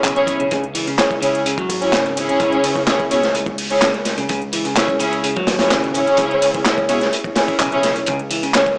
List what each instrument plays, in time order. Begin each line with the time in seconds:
Already playing: swell
0.04 picked electric bass B1, clean electric guitar C#3, clap, closed hi-hat
0.16 string section C#4 E4 G#4 C#5, closed hi-hat
0.27 kick, closed hi-hat
0.40 clean electric guitar C#3, closed hi-hat
0.51 picked electric bass C#2, clean electric guitar C#3, kick, closed hi-hat
0.64 closed hi-hat
0.75 clean electric guitar E3, closed hi-hat, ride
0.87 clean electric guitar C#3, closed hi-hat
0.98 clean electric guitar C#3, string section C#4 E4 G#4 C#5, snare, clap, closed hi-hat
1.11 kick, closed hi-hat
1.21 clean electric guitar C#3, string section C#4 E4 G#4 C#5, closed hi-hat, ride
1.35 closed hi-hat
1.46 clean electric guitar C#3, closed hi-hat
1.58 clean electric guitar F#3, kick, closed hi-hat
1.69 picked electric bass G#1, closed hi-hat, ride
1.81 string section C#4 E4 G#4 C#5, closed hi-hat
1.93 clean electric guitar C#3, snare, clap, closed hi-hat
2.06 closed hi-hat
2.16 string section C#4 E4 G#4 C#5, closed hi-hat, ride
2.28 clean electric guitar C#4, closed hi-hat
2.40 picked electric bass C#2, clean electric guitar C#3, kick, closed hi-hat
2.52 closed hi-hat
2.63 picked electric bass C#2, closed hi-hat, ride
2.76 kick, closed hi-hat
2.87 string section C#4 E4 G#4 C#5, snare, clap, closed hi-hat
3.00 kick, closed hi-hat
3.11 clean electric guitar B2, string section C#4 E4 G#4 C#5, closed hi-hat, ride
3.23 snare, closed hi-hat
3.34 picked electric bass C#2, closed hi-hat
3.46 kick, closed hi-hat
3.58 closed hi-hat, open hi-hat, ride
3.70 string section C#4 E4 G#4 C#5, closed hi-hat
3.81 clean electric guitar C#3, snare, clap, closed hi-hat
3.94 closed hi-hat
4.05 snare, closed hi-hat, ride
4.18 clean electric guitar C#3, closed hi-hat
4.29 picked electric bass C#2, clean electric guitar C#3, kick, closed hi-hat
4.42 closed hi-hat
4.53 clean electric guitar E3, closed hi-hat, ride
4.65 clean electric guitar C#3, closed hi-hat
4.76 clean electric guitar C#3, string section C#4 E4 G#4 C#5, snare, clap, closed hi-hat
4.88 kick, closed hi-hat
4.99 clean electric guitar C#3, string section C#4 E4 G#4 C#5, closed hi-hat, ride
5.13 closed hi-hat
5.24 clean electric guitar C#3, closed hi-hat
5.36 clean electric guitar F#3, kick, closed hi-hat
5.47 picked electric bass G#1, snare, closed hi-hat, ride
5.59 string section C#4 E4 G#4 C#5, snare, closed hi-hat
5.70 clean electric guitar C#3, snare, clap, closed hi-hat
5.84 closed hi-hat
5.94 string section C#4 E4 G#4 C#5, closed hi-hat, ride
6.07 clean electric guitar C#4, closed hi-hat
6.17 picked electric bass C#2, clean electric guitar C#3, kick, closed hi-hat
6.19 closed hi-hat
6.31 closed hi-hat
6.41 picked electric bass C#2, closed hi-hat, ride
6.54 kick, closed hi-hat
6.65 string section C#4 E4 G#4 C#5, snare, clap, closed hi-hat
6.78 kick, closed hi-hat
6.89 clean electric guitar B2, string section C#4 E4 G#4 C#5, closed hi-hat, ride
7.01 snare, closed hi-hat
7.13 closed hi-hat
7.24 kick, closed hi-hat
7.36 string section C#4 E4 G#4 C#5, clean electric guitar C#4, snare, closed hi-hat, ride
7.48 muted picked electric bass stroke, kick, closed hi-hat
7.60 picked electric bass B1, clean electric guitar C#3, clap, closed hi-hat
7.72 clean electric guitar C#3, string section C#4 E4 G#4 C#5, closed hi-hat
7.83 clean electric guitar C#3, snare, closed hi-hat, ride
7.96 closed hi-hat
8.06 picked electric bass C#2, clean electric guitar C#3, kick, closed hi-hat
8.19 closed hi-hat
8.31 clean electric guitar E3, closed hi-hat, ride
8.43 clean electric guitar C#3, closed hi-hat
8.54 clean electric guitar C#3, string section C#4 E4 G#4 C#5, snare, clap, closed hi-hat
8.66 kick, closed hi-hat